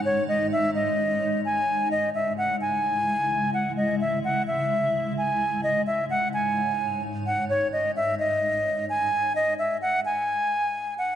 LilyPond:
<<
  \new Staff \with { instrumentName = "Flute" } { \time 4/4 \key cis \minor \tempo 4 = 129 cis''8 dis''8 e''8 dis''4. gis''4 | dis''8 e''8 fis''8 gis''2 fis''8 | dis''8 e''8 fis''8 e''4. gis''4 | dis''8 e''8 fis''8 gis''2 fis''8 |
cis''8 dis''8 e''8 dis''4. gis''4 | dis''8 e''8 fis''8 gis''2 fis''8 | }
  \new Staff \with { instrumentName = "Ambient pad" } { \time 4/4 \key cis \minor << { <gis, dis' cis''>1 | <cis e' e''>1~ | <cis e' e''>1 | <gis, dis' cis''>1~ |
<gis, dis' cis''>1 | r1 | } \\ { gis1 | gis1~ | gis1~ | gis1~ |
gis1 | r1 | } >> }
>>